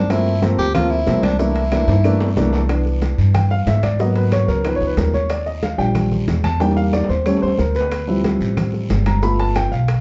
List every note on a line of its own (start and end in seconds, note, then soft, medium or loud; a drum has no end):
0.00 0.53 G2 medium
0.00 0.12 D4 medium
0.10 0.33 F3 medium
0.10 0.33 A3 medium
0.10 0.33 A#3 medium
0.10 0.33 C4 medium
0.10 0.42 E4 loud
0.10 high bongo medium
0.10 high conga soft
0.10 high timbale medium
0.10 long guiro medium
0.10 claves medium
0.10 maracas medium
0.26 high bongo soft
0.26 high conga soft
0.26 maracas soft
0.42 0.65 F3 medium
0.42 0.65 A3 medium
0.42 0.65 A#3 medium
0.42 0.65 C4 medium
0.42 high bongo medium
0.42 high conga medium
0.42 high timbale medium
0.42 low timbale medium
0.42 short guiro medium
0.42 maracas medium
0.58 1.04 D2 medium
0.58 0.74 G4 loud
0.58 high conga soft
0.58 short guiro medium
0.58 maracas soft
0.75 0.97 F3 medium
0.75 0.97 A3 medium
0.75 0.97 A#3 medium
0.75 0.97 C4 medium
0.75 0.92 F4 loud
0.75 high bongo medium
0.75 high conga soft
0.75 low conga medium
0.75 high timbale medium
0.75 long guiro medium
0.75 claves medium
0.75 maracas medium
0.91 1.24 E4 loud
0.91 high bongo soft
0.91 high conga soft
0.91 maracas soft
1.06 1.82 C2 medium
1.06 1.30 F3 medium
1.06 1.30 A3 medium
1.06 1.30 A#3 medium
1.06 1.30 C4 medium
1.06 high bongo soft
1.06 low bongo medium
1.06 high conga medium
1.06 high timbale medium
1.06 low timbale medium
1.06 short guiro medium
1.06 maracas medium
1.23 1.38 D4 medium
1.23 high bongo soft
1.23 high conga medium
1.23 high timbale loud
1.23 short guiro medium
1.23 claves medium
1.23 maracas soft
1.39 1.62 E3 medium
1.39 1.62 A3 medium
1.39 1.62 A#3 medium
1.39 1.62 D4 medium
1.39 2.49 E4 medium
1.39 high bongo medium
1.39 high conga soft
1.39 long guiro medium
1.39 maracas medium
1.56 high bongo soft
1.56 high conga soft
1.56 high timbale medium
1.56 maracas soft
1.72 1.95 E3 medium
1.72 1.95 A3 medium
1.72 1.95 A#3 medium
1.72 1.95 D4 medium
1.72 high bongo medium
1.72 high conga medium
1.72 high timbale medium
1.72 low timbale medium
1.72 short guiro medium
1.72 claves medium
1.72 maracas medium
1.88 2.33 G2 medium
1.88 high bongo medium
1.88 high timbale medium
1.88 short guiro medium
1.88 maracas soft
2.04 2.27 E3 medium
2.04 2.27 A3 medium
2.04 2.27 A#3 medium
2.04 2.27 D4 loud
2.04 high bongo medium
2.04 high conga soft
2.04 long guiro medium
2.04 claves medium
2.04 maracas medium
2.20 high bongo medium
2.20 high conga soft
2.20 low timbale medium
2.20 maracas soft
2.36 3.12 C2 medium
2.36 2.60 E3 medium
2.36 2.60 A3 medium
2.36 2.60 A#3 medium
2.36 2.60 D4 medium
2.36 low bongo medium
2.36 high conga medium
2.36 low timbale medium
2.36 short guiro medium
2.36 maracas medium
2.53 low bongo medium
2.53 low timbale medium
2.53 short guiro medium
2.53 maracas soft
2.69 3.95 E3 medium
2.69 3.96 B3 medium
2.69 3.96 D4 medium
2.69 high bongo medium
2.69 high conga soft
2.69 high timbale medium
2.69 long guiro medium
2.69 claves medium
2.69 maracas medium
2.86 high bongo soft
2.86 high conga soft
2.86 maracas soft
3.02 high bongo medium
3.02 high conga medium
3.02 high timbale medium
3.02 low timbale medium
3.02 short guiro medium
3.02 maracas medium
3.18 3.64 G2 medium
3.18 high conga soft
3.18 short guiro medium
3.18 maracas soft
3.34 3.50 G5 medium
3.34 high bongo medium
3.34 high conga soft
3.34 low conga medium
3.34 high timbale medium
3.34 long guiro medium
3.34 claves medium
3.34 maracas medium
3.51 3.67 F5 medium
3.51 high bongo soft
3.51 high conga soft
3.51 maracas soft
3.66 4.43 G#2 medium
3.66 3.83 E5 medium
3.66 high bongo soft
3.66 low bongo medium
3.66 high conga medium
3.66 high timbale medium
3.66 low timbale medium
3.66 short guiro medium
3.66 maracas medium
3.83 3.99 D5 medium
3.83 high bongo soft
3.83 high conga medium
3.83 high timbale loud
3.83 short guiro medium
3.83 claves medium
3.83 maracas soft
3.99 4.61 F#3 medium
3.99 4.62 A#3 soft
3.99 4.62 B3 medium
3.99 4.16 D#5 medium
3.99 high bongo medium
3.99 long guiro medium
3.99 maracas medium
4.16 4.32 B4 medium
4.16 high bongo soft
4.16 high conga soft
4.16 high timbale medium
4.16 maracas soft
4.32 4.48 C#5 medium
4.32 high bongo medium
4.32 high conga medium
4.32 high timbale medium
4.32 low timbale medium
4.32 short guiro medium
4.32 claves medium
4.32 maracas medium
4.48 4.79 C#2 medium
4.48 4.64 A#4 medium
4.48 short guiro medium
4.48 maracas soft
4.64 5.11 F3 medium
4.64 5.11 B3 soft
4.64 5.11 D#4 medium
4.64 4.75 B4 medium
4.64 high bongo medium
4.64 high conga soft
4.64 high timbale medium
4.64 long guiro medium
4.64 claves medium
4.64 maracas medium
4.76 4.86 C#5 medium
4.81 4.96 C#2 medium
4.81 high bongo soft
4.81 high conga soft
4.81 maracas soft
4.87 4.97 B4 medium
4.97 5.73 D#2 medium
4.97 5.13 A#4 medium
4.97 high bongo soft
4.97 low bongo medium
4.97 high conga medium
4.97 high timbale medium
4.97 low timbale medium
4.97 short guiro medium
4.97 maracas medium
5.14 5.30 C#5 medium
5.14 high bongo soft
5.14 high conga medium
5.14 short guiro medium
5.14 maracas soft
5.30 5.46 D5 medium
5.30 high bongo medium
5.30 high conga soft
5.30 high timbale medium
5.30 long guiro medium
5.30 claves medium
5.30 maracas medium
5.46 5.62 D#5 medium
5.46 high bongo soft
5.46 high conga soft
5.46 maracas soft
5.62 5.79 F5 medium
5.62 high bongo medium
5.62 high conga medium
5.62 high timbale medium
5.62 low timbale medium
5.62 short guiro medium
5.62 maracas medium
5.78 6.24 A#1 medium
5.78 6.25 F3 medium
5.78 6.25 G3 soft
5.78 6.26 D4 medium
5.78 6.09 G5 medium
5.78 high conga soft
5.78 short guiro medium
5.78 maracas soft
5.95 high bongo medium
5.95 high conga soft
5.95 low conga medium
5.95 high timbale medium
5.95 long guiro medium
5.95 claves medium
5.95 maracas medium
6.12 high bongo soft
6.12 high conga soft
6.12 low conga medium
6.12 maracas soft
6.28 7.04 E2 loud
6.28 high bongo soft
6.28 low bongo medium
6.28 high conga medium
6.28 high timbale medium
6.28 low timbale medium
6.28 short guiro medium
6.28 maracas medium
6.44 6.60 A5 medium
6.44 high bongo soft
6.44 high conga medium
6.44 high timbale medium
6.44 short guiro medium
6.44 claves medium
6.44 maracas soft
6.60 7.07 G3 medium
6.60 7.07 A#3 medium
6.60 7.08 D4 medium
6.60 6.77 G5 medium
6.60 high bongo medium
6.60 high timbale medium
6.60 long guiro medium
6.60 maracas medium
6.71 high timbale medium
6.77 6.93 F5 medium
6.77 high bongo soft
6.77 high conga soft
6.77 maracas soft
6.93 7.09 D5 medium
6.93 high bongo medium
6.93 high conga medium
6.93 high timbale medium
6.93 short guiro medium
6.93 claves medium
6.93 maracas medium
7.04 low timbale medium
7.09 7.40 D#2 loud
7.09 7.25 C5 medium
7.09 short guiro medium
7.09 maracas soft
7.26 7.48 G3 medium
7.26 7.48 A3 soft
7.26 7.48 C#4 medium
7.26 7.42 C#5 medium
7.26 high bongo medium
7.26 high conga soft
7.26 long guiro medium
7.26 claves medium
7.26 maracas medium
7.37 low timbale medium
7.42 7.58 D#2 medium
7.42 7.58 C5 medium
7.42 high bongo soft
7.42 high conga soft
7.42 maracas soft
7.48 low timbale medium
7.58 8.35 D2 medium
7.58 7.75 A#4 medium
7.58 high bongo soft
7.58 low bongo medium
7.58 high conga medium
7.58 short guiro medium
7.58 maracas medium
7.75 8.53 B4 medium
7.75 high bongo soft
7.75 short guiro medium
7.75 maracas soft
7.80 low timbale medium
7.91 high bongo medium
7.91 high conga soft
7.91 high timbale loud
7.91 long guiro medium
7.91 claves medium
7.91 maracas medium
8.07 9.19 F3 medium
8.07 9.19 G3 medium
8.07 9.19 C4 medium
8.07 9.19 E4 medium
8.07 high bongo soft
8.07 high conga soft
8.07 maracas soft
8.24 high bongo medium
8.24 high conga medium
8.24 high timbale medium
8.24 low timbale medium
8.24 short guiro medium
8.24 maracas medium
8.40 8.86 A1 medium
8.40 high conga soft
8.40 short guiro medium
8.40 maracas soft
8.57 high bongo medium
8.57 high conga soft
8.57 low conga medium
8.57 high timbale medium
8.57 long guiro medium
8.57 claves medium
8.57 maracas medium
8.74 high bongo soft
8.74 high conga soft
8.74 maracas soft
8.90 9.66 G1 loud
8.90 high bongo soft
8.90 low bongo medium
8.90 high conga medium
8.90 high timbale medium
8.90 low timbale medium
8.90 short guiro medium
8.90 maracas medium
9.06 9.22 A#5 medium
9.06 high bongo soft
9.06 high conga medium
9.06 high timbale loud
9.06 short guiro medium
9.06 claves medium
9.06 maracas soft
9.22 9.69 A3 medium
9.22 9.70 B3 medium
9.22 9.70 F4 medium
9.22 9.39 B5 loud
9.22 high bongo medium
9.22 long guiro medium
9.22 maracas medium
9.39 9.55 A5 medium
9.39 high bongo soft
9.39 high conga soft
9.39 high timbale medium
9.39 maracas soft
9.56 9.72 G5 medium
9.56 high bongo medium
9.56 high conga medium
9.56 high timbale medium
9.56 low timbale medium
9.56 short guiro medium
9.56 claves medium
9.56 maracas medium
9.72 10.01 B1 medium
9.72 10.01 F5 medium
9.72 short guiro medium
9.72 maracas soft
9.88 high bongo medium
9.88 high conga soft
9.88 high timbale medium
9.88 long guiro medium
9.88 claves medium
9.88 maracas medium